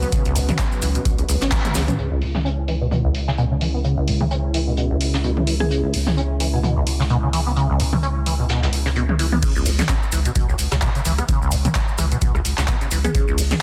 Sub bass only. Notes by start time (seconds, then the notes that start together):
0.36 C#2
0.82 C#2
1.05 C#2
1.29 C#2
1.42 G#1
1.75 C#2
1.98 C#2
9.66 C#2
10.12 C#2
10.36 C#2
10.59 C#2
10.72 C#2
11.05 C#2
11.52 C#2
11.98 C#2
12.22 C#2
12.45 C#2
12.58 C#2
12.91 C#2
13.38 C#2